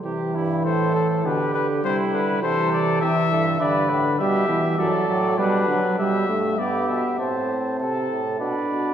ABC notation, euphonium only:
X:1
M:3/4
L:1/8
Q:1/4=101
K:C
V:1 name="Euphonium" clef=bass
C, G,, A,,2 B,, D, | C, D, C,2 C, G,, | G,, A,, B,, B,, ^F,, A,, | B,, D, B,, G,, G,, B,, |
A,,2 C, A,, B,, B,, |]